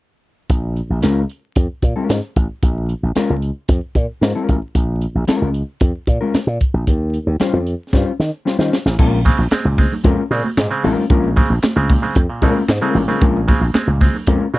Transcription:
0.50 A#1, kick, closed hi-hat
0.76 closed hi-hat
0.90 A#1
1.02 C#2 G#3 C#4 F4 A#4, snare, closed hi-hat
1.29 closed hi-hat
1.55 F2, kick, closed hi-hat
1.82 A#2, kick, closed hi-hat
1.96 G#3 C#4 F4 A#4
2.09 G#2, snare, closed hi-hat
2.36 A1, kick, closed hi-hat
2.63 A#1, kick, closed hi-hat
2.89 closed hi-hat
3.03 A#1
3.15 G#3 C#4 F4 A#4, muted slap bass stroke, snare, closed hi-hat
3.30 C#2
3.42 closed hi-hat
3.68 F2, kick, closed hi-hat
3.95 A#2, kick, closed hi-hat
4.21 G#2 G#3 C#4 F4 A#4, snare, closed hi-hat
4.35 G#3 C#4 F4 A#4
4.49 A1, kick, closed hi-hat
4.75 A#1, kick, closed hi-hat
5.01 closed hi-hat
5.15 A#1
5.27 G#3 C#4 F4 A#4, muted slap bass stroke, snare, closed hi-hat
5.42 C#2
5.54 closed hi-hat
5.80 F2, kick, closed hi-hat
6.07 A#2, kick, closed hi-hat
6.21 G#3 C#4 F4 A#4
6.34 muted slap bass stroke, snare, closed hi-hat
6.47 A#2
6.60 kick, closed hi-hat
6.74 A#1
6.87 D#2, kick, closed hi-hat
7.14 closed hi-hat
7.27 D#2
7.40 G3 C#4 F4 C5, muted slap bass stroke, snare, closed hi-hat
7.53 F2
7.67 closed hi-hat
7.93 G2 G3 C#4 F4 C5, kick, snare
8.19 D#3, snare
8.45 G3 C#4 F4 C5, snare
8.59 D#3 G3 C#4 F4 C5, snare
8.73 snare
8.85 A1, snare
8.98 A#1 A#2 G#3 C#4 F4 A#4, kick, crash
9.12 muted conga
9.25 C#3 G#3 C4, kick, open hi-hat, high conga
9.38 A#1 G#3 C4
9.51 G#3 C4, muted slap bass stroke, snare, clap, closed hi-hat, high conga
9.65 C#2 A#2, muted conga
9.78 G#3 C4, kick, open hi-hat, high conga
9.92 low conga
10.04 F2 A#2 G#3 C#4 F4 A#4, kick, closed hi-hat, muted conga
10.17 muted conga
10.31 A#2 C#3 G#3 C4, open hi-hat
10.44 G#3 C4, high conga
10.56 G#2 A#2, snare, clap, closed hi-hat, muted conga
10.71 C#3 G#3 C4
10.83 A1 G#3 C4 C#4 F4 A#4, open hi-hat, high conga, low conga
10.97 low conga
11.10 A#1 A#2 G#3 C#4 F4 A#4, kick, closed hi-hat
11.24 muted conga
11.36 C#3 G#3 C4, kick, open hi-hat, high conga
11.50 A#1 G#3 C4
11.62 snare, clap, closed hi-hat, high conga
11.76 C#2 C#3 G#3 C4
11.89 A#2, kick, open hi-hat, high conga
12.02 C#3 G#3 C4, low conga
12.15 F2 G#3 C4, kick, closed hi-hat, muted conga
12.29 A#2
12.42 A#2 C#3 G#3 C4 C#4 F4 A#4, kick, open hi-hat
12.56 high conga
12.68 G#2, snare, clap, closed hi-hat
12.81 C#3 G#3 C4 C#4 F4 A#4, muted conga
12.95 A1 A#2, open hi-hat, high conga, low conga
13.08 C#3 G#3 C4 C#4 F4 A#4, low conga
13.21 A#1 A#2 G#3 C#4 F4 A#4, kick, closed hi-hat, muted conga
13.48 C#3 G#3 C4, kick, open hi-hat, high conga
13.61 A#1 G#3 C4
13.74 G#3 C4, muted slap bass stroke, snare, clap, closed hi-hat, muted conga, high conga
13.87 C#2 A#2, muted conga
14.00 G#3 C4, kick, open hi-hat, high conga
14.14 low conga
14.27 F2 A#2 G#3 C#4 F4 A#4, kick, closed hi-hat
14.40 muted conga
14.54 A#2 C#3 G#3 C4, open hi-hat

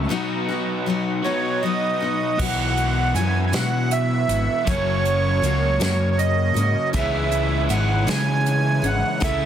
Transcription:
Already playing: A3 C#4 F#4
0.09 B2 F#3 B3 D#4 F#4 B4 D#5
0.49 B3 D#4 F#4
0.86 F#3 B3 D#4 F#4
1.24 B2 F#3 B3 D#4 F#4 C#5
1.63 F#3 B3 D#4 F#4 D#5
2.00 B3 D#4 F#4
2.38 B1 B2 E3 F#3 B3 E4 F#4 B4 E5 F#5, kick, crash
2.77 closed hi-hat
3.14 F#2 F#3 B3 E4 F#4 G#5, closed hi-hat
3.46 G#5
3.52 B2 F#3 B3 E4 F#4 F#5, snare, closed hi-hat
3.91 E5, closed hi-hat
4.28 G#1 E4 F#4, closed hi-hat
4.32 B3
4.67 F#1 F#2 C#3 F#3 A#3 C#4 F#4 A#4 C#5, kick, closed hi-hat
5.05 closed hi-hat
5.42 C#2 F#3 A#3 C#4 F#4, closed hi-hat
5.80 F#2 C#3 F#3 A#3 C#4 F#4 C#5, snare, closed hi-hat
6.11 C#5
6.18 D#5, closed hi-hat
6.54 G#2 A#3 C#4 F#4, closed hi-hat
6.58 F#3
6.93 C#2 C#3 E3 G#3 B3 C#4 E4 G#4 B4 C#5 E5, kick, closed hi-hat
7.32 closed hi-hat
7.69 G#1 E3 B3 C#4 G#4 F#5, closed hi-hat
8.07 C#3 E3 B3 C#4 G#4 G#5, snare, closed hi-hat
8.46 closed hi-hat
8.82 G#1 B3 C#4 G#4, closed hi-hat
8.86 F#5
9.20 C#2 C#3 E3 A3 C#4 E4 A4 C#5 E5, kick, closed hi-hat

